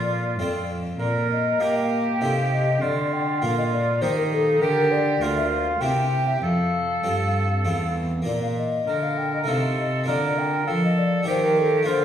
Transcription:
0.00 0.35 A#2 soft
0.00 0.40 A#2 soft
0.00 0.21 A#3 soft
0.00 0.22 F4 soft
0.00 0.66 F4 medium
0.00 0.22 A#4 soft
0.00 0.70 D5 medium
0.38 0.99 F2 soft
0.38 0.96 F2 soft
0.38 0.96 C4 soft
0.38 0.96 F4 soft
0.38 0.97 A4 soft
0.99 1.56 A#2 medium
0.99 1.57 A#2 soft
0.99 1.63 A#4 medium
0.99 1.28 D5 medium
1.31 1.78 D#5 medium
1.60 2.04 A#3 soft
1.60 2.22 A#3 soft
1.60 2.04 F4 soft
1.60 2.83 G4 medium
1.60 2.04 A#4 soft
1.76 1.90 F5 medium
1.91 2.23 G5 medium
2.21 2.82 C3 soft
2.21 2.78 C3 soft
2.21 2.78 D#4 soft
2.21 2.78 F4 soft
2.21 2.79 A4 soft
2.21 2.51 F5 medium
2.52 2.85 D#5 medium
2.82 3.38 D3 soft
2.82 3.45 D3 medium
2.82 4.02 F4 medium
2.82 3.15 D5 medium
3.13 3.45 G5 medium
3.42 3.98 A#2 soft
3.42 4.04 A#2 medium
3.42 3.85 A#3 soft
3.42 3.85 F4 soft
3.42 3.86 A#4 soft
3.42 3.57 F5 medium
3.58 3.64 D#5 medium
3.72 4.03 D5 medium
4.01 4.58 D#3 medium
4.01 4.62 D#3 medium
4.01 4.58 A#3 soft
4.01 4.61 D#4 medium
4.01 4.58 G4 soft
4.01 4.59 A#4 soft
4.01 4.17 C5 medium
4.18 4.24 A#4 medium
4.32 4.63 A4 medium
4.61 5.17 D3 medium
4.61 5.20 D3 medium
4.61 5.24 G4 medium
4.61 4.93 A#4 medium
4.92 5.36 D5 medium
5.21 5.77 D2 soft
5.21 5.80 D2 medium
5.21 5.64 A#3 soft
5.21 5.65 F4 soft
5.21 5.83 F4 medium
5.21 5.65 A#4 soft
5.37 5.50 E5 medium
5.50 5.82 F5 medium
5.80 6.41 C3 soft
5.80 6.38 C3 soft
5.80 6.38 C4 soft
5.80 6.39 E4 soft
5.80 6.42 G4 medium
5.80 6.39 A#4 soft
5.80 6.29 G5 medium
6.27 6.41 E5 medium
6.42 7.02 F2 soft
6.42 7.00 F2 soft
6.42 7.93 A4 soft
6.42 7.93 F5 medium
7.03 7.61 G2 soft
7.03 7.67 G2 soft
7.03 7.48 C4 soft
7.03 7.48 F4 soft
7.03 7.48 A4 soft
7.65 8.23 E2 soft
7.65 8.27 E2 soft
7.65 8.09 C4 soft
7.65 8.10 F4 soft
7.65 8.10 A4 soft
8.22 9.42 A#3 soft
8.22 9.43 F4 soft
8.22 9.43 A#4 soft
8.26 8.83 A#2 soft
8.26 8.84 A#2 medium
8.26 8.41 D5 medium
8.42 8.48 F5 medium
8.58 9.05 D#5 medium
8.87 9.44 D3 soft
8.87 9.47 D3 medium
8.87 9.49 A#4 medium
9.03 9.19 F5 medium
9.18 9.33 G5 medium
9.34 9.48 D#5 medium
9.44 10.04 A3 soft
9.44 10.05 D#4 soft
9.44 10.05 F4 soft
9.44 10.07 A4 medium
9.48 10.10 C3 medium
9.48 10.04 C3 soft
9.48 9.56 F5 medium
9.79 10.10 D#5 medium
10.04 11.22 A#3 soft
10.04 11.23 D4 soft
10.04 11.23 F4 soft
10.04 10.66 A#4 medium
10.08 10.67 D3 medium
10.08 10.64 D3 soft
10.08 10.40 D5 medium
10.39 10.69 G5 medium
10.67 11.24 F3 soft
10.67 11.26 F3 medium
10.67 11.26 A4 medium
10.67 10.83 F5 medium
10.84 11.00 D#5 medium
10.98 11.28 D5 medium
11.23 11.81 A#3 soft
11.23 11.84 G4 soft
11.23 11.84 A#4 soft
11.27 11.83 D#3 soft
11.27 11.89 D#3 medium
11.27 11.88 G4 medium
11.27 11.45 C5 medium
11.44 11.60 A#4 medium
11.59 11.88 A4 medium
11.83 12.05 A#3 soft
11.83 12.05 F4 soft
11.83 12.05 F4 medium
11.83 12.05 A#4 soft
11.87 12.05 D3 soft
11.87 12.05 D3 medium
11.87 12.05 C5 medium

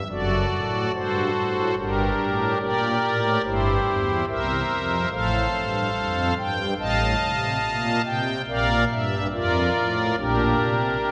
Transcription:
0.10 0.46 F#1 medium
0.10 0.46 F#2 medium
0.10 0.92 F#4 medium
0.10 0.92 A4 medium
0.10 0.92 D5 loud
0.52 0.88 A2 medium
0.94 1.30 G2 medium
0.94 1.75 F#4 medium
0.94 1.75 A4 medium
0.94 1.75 C5 loud
1.35 1.70 A2 medium
1.77 2.13 G1 medium
1.77 2.13 G2 medium
1.77 2.58 D4 medium
1.77 2.58 G4 medium
1.77 2.58 A#4 loud
2.18 2.54 A2 medium
2.60 2.95 A#2 medium
2.60 3.41 G4 medium
2.60 3.41 A#4 medium
2.60 3.42 D5 loud
3.02 3.38 A2 medium
3.44 3.80 G1 medium
3.44 3.80 G2 medium
3.44 4.25 E4 medium
3.44 4.25 G4 medium
3.44 4.25 C5 loud
3.86 4.22 E2 medium
4.27 4.63 C2 medium
4.27 5.09 A#4 medium
4.27 5.09 C5 medium
4.27 5.09 E5 loud
4.69 5.05 F2 medium
5.12 5.47 A1 medium
5.12 5.47 A2 medium
5.12 6.34 A4 medium
5.12 6.34 C5 medium
5.12 6.34 F5 loud
5.53 5.89 G2 medium
5.95 6.31 F2 medium
6.38 6.73 G2 medium
6.38 6.73 G5 loud
6.79 7.15 A1 medium
6.79 7.15 A2 medium
6.79 8.02 D#5 medium
6.79 8.02 F5 medium
6.79 8.02 A5 loud
7.21 7.57 C3 medium
7.63 7.99 A#2 medium
8.05 8.41 C3 medium
8.05 8.41 G5 loud
8.48 8.84 A#1 medium
8.48 8.84 A#2 medium
8.48 8.84 A#4 medium
8.48 8.84 D5 medium
8.48 8.84 F5 loud
8.91 9.27 G2 medium
8.91 9.27 E5 medium
9.33 9.69 F2 medium
9.33 10.15 F4 medium
9.33 10.16 A#4 medium
9.33 10.15 D5 loud
9.76 10.12 A2 medium
10.18 10.54 A#1 medium
10.18 10.54 A#2 medium
10.18 11.11 D4 medium
10.18 11.11 G4 medium
10.18 11.11 A#4 loud
10.60 10.97 C3 medium
11.03 11.11 A#2 medium

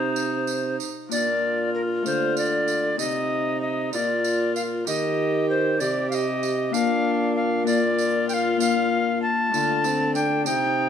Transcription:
0.00 0.77 C3 medium
0.00 1.14 C3 soft
0.00 0.88 D#4 medium
0.00 1.13 D#4 soft
0.00 0.76 C5 medium
0.16 tambourine soft
0.47 tambourine soft
0.80 tambourine medium
1.09 2.07 A#2 medium
1.09 2.08 A#2 soft
1.09 2.07 A#3 soft
1.09 3.01 D4 soft
1.09 2.02 F4 soft
1.09 2.96 F4 medium
1.09 1.70 D5 medium
1.09 tambourine medium
1.74 1.82 A#4 medium
2.02 2.98 D3 medium
2.02 3.02 D3 soft
2.02 3.00 A3 soft
2.02 3.01 F4 soft
2.02 tambourine soft
2.06 2.37 C5 medium
2.37 2.99 D5 medium
2.37 tambourine soft
2.68 tambourine soft
2.97 3.91 C3 medium
2.97 3.96 C3 soft
2.97 3.94 C4 soft
2.97 3.95 D#4 soft
2.97 3.95 D#4 medium
2.97 3.95 G4 soft
2.97 3.61 D#5 medium
2.97 tambourine medium
3.61 3.92 D#5 medium
3.91 4.85 A#2 medium
3.91 4.89 A#2 soft
3.91 4.88 F4 soft
3.91 4.89 F4 medium
3.91 4.85 A#4 soft
3.91 4.55 D5 medium
3.91 tambourine soft
4.24 tambourine soft
4.55 4.63 F5 medium
4.55 tambourine soft
4.85 5.82 D#3 medium
4.85 5.83 D#3 soft
4.85 5.77 D#4 soft
4.85 5.80 G4 medium
4.85 5.82 A#4 soft
4.85 5.48 D#5 medium
4.85 tambourine medium
5.50 5.81 C5 medium
5.78 6.76 C3 soft
5.78 6.73 C3 medium
5.78 6.75 D#4 soft
5.78 6.75 G4 medium
5.78 6.76 C5 soft
5.78 6.09 D5 medium
5.78 tambourine soft
6.10 6.15 F5 medium
6.10 tambourine soft
6.14 6.74 D#5 medium
6.43 tambourine soft
6.70 9.21 A#2 medium
6.70 9.56 A#2 soft
6.70 7.62 A#3 soft
6.70 7.63 D4 soft
6.70 7.69 D4 medium
6.70 7.65 F4 soft
6.70 7.35 F5 medium
6.70 tambourine medium
7.36 7.66 F5 medium
7.63 8.55 A#3 soft
7.63 8.57 D4 soft
7.63 8.58 F4 soft
7.63 8.28 D5 medium
7.63 tambourine soft
7.67 9.53 F4 medium
7.99 tambourine soft
8.29 8.35 G5 medium
8.29 tambourine soft
8.34 8.59 F5 medium
8.57 9.54 A#3 soft
8.57 9.50 D4 soft
8.57 9.51 F4 soft
8.57 9.21 F5 medium
8.57 tambourine medium
9.22 10.13 A5 loud
9.49 10.47 A3 soft
9.49 10.47 D4 soft
9.49 10.48 F4 soft
9.53 10.48 D3 medium
9.53 10.49 D3 medium
9.53 9.86 F4 medium
9.53 tambourine soft
9.84 10.17 C4 medium
9.84 tambourine soft
10.15 10.49 D4 medium
10.15 10.45 G5 medium
10.15 tambourine soft
10.43 10.89 C3 medium
10.43 10.89 C3 soft
10.43 10.89 C4 soft
10.43 10.89 D#4 soft
10.43 10.89 G5 medium
10.43 tambourine medium
10.47 10.89 D#4 medium

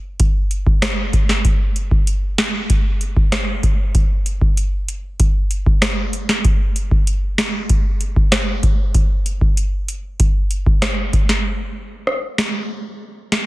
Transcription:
0.20 kick loud
0.20 closed hi-hat medium
0.51 closed hi-hat soft
0.67 kick loud
0.82 cross-stick medium
0.82 snare loud
0.82 closed hi-hat medium
1.13 kick medium
1.13 closed hi-hat medium
1.29 snare medium
1.45 kick loud
1.45 closed hi-hat medium
1.76 closed hi-hat medium
1.91 kick medium
2.07 closed hi-hat medium
2.38 snare loud
2.38 closed hi-hat medium
2.70 kick loud
2.70 closed hi-hat medium
3.01 closed hi-hat soft
3.17 kick loud
3.32 cross-stick medium
3.32 snare loud
3.32 closed hi-hat medium
3.63 kick medium
3.63 closed hi-hat medium
3.95 kick loud
3.95 closed hi-hat medium
4.26 closed hi-hat medium
4.41 kick medium
4.57 closed hi-hat medium
4.88 closed hi-hat medium
5.20 kick loud
5.20 closed hi-hat medium
5.51 closed hi-hat soft
5.66 kick loud
5.82 cross-stick medium
5.82 snare loud
5.82 closed hi-hat medium
6.13 closed hi-hat medium
6.29 snare medium
6.45 kick loud
6.45 closed hi-hat medium
6.76 closed hi-hat medium
6.91 kick medium
7.07 closed hi-hat medium
7.38 snare loud
7.38 closed hi-hat medium
7.69 kick loud
7.69 closed hi-hat medium
8.01 closed hi-hat soft
8.16 kick loud
8.32 cross-stick medium
8.32 snare loud
8.32 closed hi-hat medium
8.63 kick loud
8.63 closed hi-hat medium
8.95 kick loud
8.95 closed hi-hat medium
9.26 closed hi-hat medium
9.41 kick medium
9.57 closed hi-hat medium
9.88 closed hi-hat medium
10.20 kick loud
10.20 closed hi-hat medium
10.51 closed hi-hat soft
10.66 kick loud
10.82 cross-stick medium
10.82 snare loud
10.82 closed hi-hat medium
11.13 kick loud
11.13 closed hi-hat medium
11.29 snare medium
12.07 cross-stick medium
12.38 snare loud
13.32 snare medium

